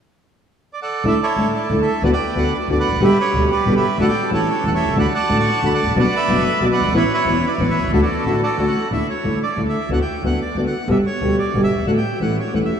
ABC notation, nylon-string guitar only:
X:1
M:3/4
L:1/8
Q:1/4=183
K:D
V:1 name="Nylon-string guitar"
z6 | [D,A,DE] z [D,A,DE] z [D,A,DE] z | [D,B,DF] z [D,B,DF] z [D,B,DF] z | [B,,D,G,B,G] z [B,,D,G,B,G] z [B,,D,G,B,G] z |
[D,A,DF] z [E,A,CE] z [E,A,CE] z | [D,A,DF] z [D,A,DF] z [D,A,DF] z | [B,,F,B,DF] z [B,,F,B,DF] z [B,,F,B,DF] z | [E,B,CE] z [E,B,CE] z [E,B,CE] z |
[D,A,DF] z [D,A,DF] z [D,A,DF] z | [D,A,DE] z [D,A,DE] z [D,A,DE] z | [D,B,DF] z [D,B,DF] z [D,B,DF] z | [B,,D,G,B,G] z [B,,D,G,B,G] z [B,,D,G,B,G] z |
[D,A,DF] z [E,A,CE] z [E,A,CE] z |]